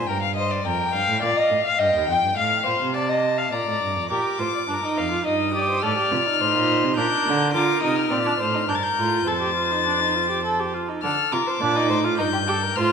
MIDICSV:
0, 0, Header, 1, 5, 480
1, 0, Start_track
1, 0, Tempo, 573614
1, 541, Time_signature, 3, 2, 24, 8
1, 7267, Tempo, 581395
1, 10766, End_track
2, 0, Start_track
2, 0, Title_t, "Violin"
2, 0, Program_c, 0, 40
2, 56, Note_on_c, 0, 79, 86
2, 180, Note_off_c, 0, 79, 0
2, 184, Note_on_c, 0, 77, 79
2, 295, Note_off_c, 0, 77, 0
2, 300, Note_on_c, 0, 75, 90
2, 424, Note_on_c, 0, 74, 75
2, 437, Note_off_c, 0, 75, 0
2, 538, Note_on_c, 0, 79, 81
2, 551, Note_off_c, 0, 74, 0
2, 1020, Note_on_c, 0, 77, 75
2, 1033, Note_off_c, 0, 79, 0
2, 1494, Note_on_c, 0, 79, 81
2, 1506, Note_off_c, 0, 77, 0
2, 1978, Note_on_c, 0, 77, 87
2, 1991, Note_off_c, 0, 79, 0
2, 2461, Note_on_c, 0, 81, 75
2, 2473, Note_off_c, 0, 77, 0
2, 2947, Note_on_c, 0, 82, 73
2, 2959, Note_off_c, 0, 81, 0
2, 3425, Note_off_c, 0, 82, 0
2, 3430, Note_on_c, 0, 86, 74
2, 4366, Note_off_c, 0, 86, 0
2, 4403, Note_on_c, 0, 87, 76
2, 4874, Note_on_c, 0, 89, 87
2, 4886, Note_off_c, 0, 87, 0
2, 5820, Note_off_c, 0, 89, 0
2, 5825, Note_on_c, 0, 91, 85
2, 6298, Note_off_c, 0, 91, 0
2, 6303, Note_on_c, 0, 86, 85
2, 6540, Note_off_c, 0, 86, 0
2, 6548, Note_on_c, 0, 87, 80
2, 6662, Note_on_c, 0, 89, 74
2, 6675, Note_off_c, 0, 87, 0
2, 7268, Note_on_c, 0, 91, 75
2, 7281, Note_off_c, 0, 89, 0
2, 7321, Note_on_c, 0, 93, 64
2, 7333, Note_off_c, 0, 91, 0
2, 7386, Note_on_c, 0, 91, 81
2, 7399, Note_off_c, 0, 93, 0
2, 7756, Note_on_c, 0, 93, 87
2, 7768, Note_off_c, 0, 91, 0
2, 8968, Note_off_c, 0, 93, 0
2, 9201, Note_on_c, 0, 89, 87
2, 9442, Note_on_c, 0, 86, 81
2, 9454, Note_off_c, 0, 89, 0
2, 10144, Note_off_c, 0, 86, 0
2, 10149, Note_on_c, 0, 91, 91
2, 10627, Note_on_c, 0, 89, 86
2, 10639, Note_off_c, 0, 91, 0
2, 10766, Note_off_c, 0, 89, 0
2, 10766, End_track
3, 0, Start_track
3, 0, Title_t, "Violin"
3, 0, Program_c, 1, 40
3, 70, Note_on_c, 1, 70, 80
3, 137, Note_off_c, 1, 70, 0
3, 311, Note_on_c, 1, 72, 71
3, 540, Note_off_c, 1, 72, 0
3, 548, Note_on_c, 1, 70, 77
3, 775, Note_off_c, 1, 70, 0
3, 780, Note_on_c, 1, 77, 96
3, 1014, Note_off_c, 1, 77, 0
3, 1021, Note_on_c, 1, 74, 101
3, 1141, Note_on_c, 1, 75, 93
3, 1153, Note_off_c, 1, 74, 0
3, 1376, Note_off_c, 1, 75, 0
3, 1381, Note_on_c, 1, 77, 91
3, 1493, Note_on_c, 1, 75, 100
3, 1505, Note_off_c, 1, 77, 0
3, 1738, Note_off_c, 1, 75, 0
3, 1743, Note_on_c, 1, 79, 87
3, 1976, Note_off_c, 1, 79, 0
3, 1981, Note_on_c, 1, 77, 92
3, 2219, Note_off_c, 1, 77, 0
3, 2226, Note_on_c, 1, 72, 85
3, 2462, Note_off_c, 1, 72, 0
3, 2468, Note_on_c, 1, 74, 89
3, 2585, Note_on_c, 1, 75, 87
3, 2598, Note_off_c, 1, 74, 0
3, 2825, Note_on_c, 1, 77, 85
3, 2837, Note_off_c, 1, 75, 0
3, 2947, Note_off_c, 1, 77, 0
3, 2953, Note_on_c, 1, 74, 87
3, 3426, Note_off_c, 1, 74, 0
3, 3435, Note_on_c, 1, 70, 68
3, 3678, Note_on_c, 1, 72, 59
3, 3691, Note_off_c, 1, 70, 0
3, 3796, Note_off_c, 1, 72, 0
3, 3801, Note_on_c, 1, 74, 60
3, 3849, Note_off_c, 1, 74, 0
3, 3925, Note_on_c, 1, 70, 68
3, 4164, Note_on_c, 1, 77, 75
3, 4177, Note_off_c, 1, 70, 0
3, 4396, Note_off_c, 1, 77, 0
3, 4401, Note_on_c, 1, 75, 68
3, 4468, Note_off_c, 1, 75, 0
3, 4646, Note_on_c, 1, 74, 60
3, 4760, Note_off_c, 1, 74, 0
3, 4764, Note_on_c, 1, 72, 72
3, 4875, Note_off_c, 1, 72, 0
3, 4880, Note_on_c, 1, 74, 78
3, 5358, Note_on_c, 1, 72, 88
3, 5371, Note_off_c, 1, 74, 0
3, 5829, Note_off_c, 1, 72, 0
3, 5835, Note_on_c, 1, 70, 79
3, 6302, Note_off_c, 1, 70, 0
3, 6310, Note_on_c, 1, 70, 87
3, 6781, Note_on_c, 1, 74, 81
3, 6793, Note_off_c, 1, 70, 0
3, 7019, Note_off_c, 1, 74, 0
3, 7024, Note_on_c, 1, 72, 77
3, 7263, Note_off_c, 1, 72, 0
3, 7270, Note_on_c, 1, 70, 77
3, 7743, Note_off_c, 1, 70, 0
3, 7747, Note_on_c, 1, 72, 72
3, 8939, Note_off_c, 1, 72, 0
3, 9209, Note_on_c, 1, 69, 81
3, 9445, Note_on_c, 1, 70, 76
3, 9457, Note_off_c, 1, 69, 0
3, 9565, Note_on_c, 1, 72, 75
3, 9578, Note_off_c, 1, 70, 0
3, 9680, Note_on_c, 1, 74, 79
3, 9692, Note_off_c, 1, 72, 0
3, 9911, Note_off_c, 1, 74, 0
3, 9916, Note_on_c, 1, 72, 76
3, 9982, Note_off_c, 1, 72, 0
3, 10158, Note_on_c, 1, 70, 75
3, 10205, Note_off_c, 1, 70, 0
3, 10272, Note_on_c, 1, 67, 68
3, 10320, Note_off_c, 1, 67, 0
3, 10392, Note_on_c, 1, 69, 68
3, 10516, Note_on_c, 1, 70, 81
3, 10529, Note_off_c, 1, 69, 0
3, 10631, Note_on_c, 1, 72, 84
3, 10644, Note_off_c, 1, 70, 0
3, 10766, Note_off_c, 1, 72, 0
3, 10766, End_track
4, 0, Start_track
4, 0, Title_t, "Viola"
4, 0, Program_c, 2, 41
4, 3429, Note_on_c, 2, 67, 80
4, 3670, Note_on_c, 2, 65, 68
4, 3682, Note_off_c, 2, 67, 0
4, 3907, Note_off_c, 2, 65, 0
4, 3912, Note_on_c, 2, 62, 76
4, 3962, Note_off_c, 2, 62, 0
4, 4036, Note_on_c, 2, 63, 82
4, 4270, Note_off_c, 2, 63, 0
4, 4275, Note_on_c, 2, 65, 70
4, 4387, Note_off_c, 2, 65, 0
4, 4392, Note_on_c, 2, 63, 76
4, 4628, Note_off_c, 2, 63, 0
4, 4633, Note_on_c, 2, 67, 77
4, 4876, Note_on_c, 2, 69, 76
4, 4888, Note_off_c, 2, 67, 0
4, 4997, Note_off_c, 2, 69, 0
4, 5003, Note_on_c, 2, 67, 77
4, 5120, Note_on_c, 2, 65, 66
4, 5133, Note_off_c, 2, 67, 0
4, 5239, Note_on_c, 2, 63, 84
4, 5252, Note_off_c, 2, 65, 0
4, 5831, Note_on_c, 2, 62, 79
4, 5843, Note_off_c, 2, 63, 0
4, 6300, Note_off_c, 2, 62, 0
4, 6305, Note_on_c, 2, 65, 94
4, 6541, Note_off_c, 2, 65, 0
4, 6546, Note_on_c, 2, 63, 80
4, 6781, Note_off_c, 2, 63, 0
4, 6785, Note_on_c, 2, 60, 84
4, 6833, Note_off_c, 2, 60, 0
4, 6907, Note_on_c, 2, 62, 87
4, 6974, Note_off_c, 2, 62, 0
4, 7146, Note_on_c, 2, 63, 74
4, 7195, Note_off_c, 2, 63, 0
4, 7267, Note_on_c, 2, 62, 74
4, 7333, Note_off_c, 2, 62, 0
4, 7509, Note_on_c, 2, 65, 81
4, 7750, Note_on_c, 2, 69, 73
4, 7762, Note_off_c, 2, 65, 0
4, 7861, Note_off_c, 2, 69, 0
4, 7866, Note_on_c, 2, 67, 75
4, 7984, Note_off_c, 2, 67, 0
4, 7989, Note_on_c, 2, 65, 63
4, 8112, Note_on_c, 2, 63, 70
4, 8125, Note_off_c, 2, 65, 0
4, 8231, Note_off_c, 2, 63, 0
4, 8236, Note_on_c, 2, 62, 65
4, 8357, Note_on_c, 2, 63, 70
4, 8369, Note_off_c, 2, 62, 0
4, 8476, Note_on_c, 2, 65, 76
4, 8488, Note_off_c, 2, 63, 0
4, 8594, Note_off_c, 2, 65, 0
4, 8599, Note_on_c, 2, 67, 71
4, 8717, Note_off_c, 2, 67, 0
4, 8722, Note_on_c, 2, 69, 68
4, 8845, Note_on_c, 2, 67, 65
4, 8857, Note_off_c, 2, 69, 0
4, 8962, Note_on_c, 2, 65, 67
4, 8975, Note_off_c, 2, 67, 0
4, 9082, Note_on_c, 2, 63, 65
4, 9094, Note_off_c, 2, 65, 0
4, 9198, Note_off_c, 2, 63, 0
4, 9203, Note_on_c, 2, 62, 78
4, 9269, Note_off_c, 2, 62, 0
4, 9444, Note_on_c, 2, 65, 80
4, 9510, Note_off_c, 2, 65, 0
4, 9684, Note_on_c, 2, 62, 92
4, 9804, Note_on_c, 2, 63, 96
4, 9816, Note_off_c, 2, 62, 0
4, 10038, Note_on_c, 2, 65, 94
4, 10051, Note_off_c, 2, 63, 0
4, 10153, Note_off_c, 2, 65, 0
4, 10158, Note_on_c, 2, 63, 83
4, 10224, Note_off_c, 2, 63, 0
4, 10398, Note_on_c, 2, 67, 89
4, 10464, Note_off_c, 2, 67, 0
4, 10637, Note_on_c, 2, 65, 95
4, 10766, Note_off_c, 2, 65, 0
4, 10766, End_track
5, 0, Start_track
5, 0, Title_t, "Cello"
5, 0, Program_c, 3, 42
5, 71, Note_on_c, 3, 43, 78
5, 534, Note_off_c, 3, 43, 0
5, 542, Note_on_c, 3, 41, 68
5, 772, Note_off_c, 3, 41, 0
5, 777, Note_on_c, 3, 43, 76
5, 826, Note_off_c, 3, 43, 0
5, 901, Note_on_c, 3, 45, 79
5, 1017, Note_off_c, 3, 45, 0
5, 1022, Note_on_c, 3, 46, 80
5, 1089, Note_off_c, 3, 46, 0
5, 1261, Note_on_c, 3, 45, 73
5, 1327, Note_off_c, 3, 45, 0
5, 1500, Note_on_c, 3, 43, 75
5, 1619, Note_off_c, 3, 43, 0
5, 1625, Note_on_c, 3, 39, 73
5, 1737, Note_off_c, 3, 39, 0
5, 1742, Note_on_c, 3, 41, 74
5, 1790, Note_off_c, 3, 41, 0
5, 1865, Note_on_c, 3, 43, 65
5, 1978, Note_off_c, 3, 43, 0
5, 1983, Note_on_c, 3, 45, 71
5, 2220, Note_off_c, 3, 45, 0
5, 2225, Note_on_c, 3, 46, 64
5, 2273, Note_off_c, 3, 46, 0
5, 2343, Note_on_c, 3, 48, 74
5, 2936, Note_off_c, 3, 48, 0
5, 2946, Note_on_c, 3, 46, 61
5, 3062, Note_off_c, 3, 46, 0
5, 3067, Note_on_c, 3, 45, 61
5, 3185, Note_off_c, 3, 45, 0
5, 3190, Note_on_c, 3, 43, 63
5, 3313, Note_on_c, 3, 41, 58
5, 3326, Note_off_c, 3, 43, 0
5, 3428, Note_off_c, 3, 41, 0
5, 3433, Note_on_c, 3, 46, 60
5, 3500, Note_off_c, 3, 46, 0
5, 3677, Note_on_c, 3, 45, 61
5, 3744, Note_off_c, 3, 45, 0
5, 3919, Note_on_c, 3, 43, 56
5, 3986, Note_off_c, 3, 43, 0
5, 4159, Note_on_c, 3, 41, 65
5, 4395, Note_off_c, 3, 41, 0
5, 4401, Note_on_c, 3, 43, 62
5, 4870, Note_off_c, 3, 43, 0
5, 4877, Note_on_c, 3, 45, 82
5, 4944, Note_off_c, 3, 45, 0
5, 5118, Note_on_c, 3, 48, 83
5, 5185, Note_off_c, 3, 48, 0
5, 5356, Note_on_c, 3, 45, 73
5, 5480, Note_on_c, 3, 46, 83
5, 5492, Note_off_c, 3, 45, 0
5, 5720, Note_on_c, 3, 48, 84
5, 5733, Note_off_c, 3, 46, 0
5, 5828, Note_off_c, 3, 48, 0
5, 5833, Note_on_c, 3, 46, 80
5, 5900, Note_off_c, 3, 46, 0
5, 6074, Note_on_c, 3, 50, 93
5, 6308, Note_off_c, 3, 50, 0
5, 6311, Note_on_c, 3, 50, 82
5, 6378, Note_off_c, 3, 50, 0
5, 6549, Note_on_c, 3, 48, 64
5, 6783, Note_off_c, 3, 48, 0
5, 6788, Note_on_c, 3, 46, 69
5, 7023, Note_off_c, 3, 46, 0
5, 7031, Note_on_c, 3, 45, 74
5, 7264, Note_off_c, 3, 45, 0
5, 7269, Note_on_c, 3, 43, 61
5, 7335, Note_off_c, 3, 43, 0
5, 7509, Note_on_c, 3, 45, 71
5, 7747, Note_off_c, 3, 45, 0
5, 7752, Note_on_c, 3, 41, 59
5, 8942, Note_off_c, 3, 41, 0
5, 9206, Note_on_c, 3, 50, 73
5, 9272, Note_off_c, 3, 50, 0
5, 9445, Note_on_c, 3, 48, 66
5, 9511, Note_off_c, 3, 48, 0
5, 9680, Note_on_c, 3, 46, 82
5, 9915, Note_on_c, 3, 45, 75
5, 9927, Note_off_c, 3, 46, 0
5, 10155, Note_on_c, 3, 43, 79
5, 10168, Note_off_c, 3, 45, 0
5, 10630, Note_off_c, 3, 43, 0
5, 10635, Note_on_c, 3, 45, 76
5, 10766, Note_off_c, 3, 45, 0
5, 10766, End_track
0, 0, End_of_file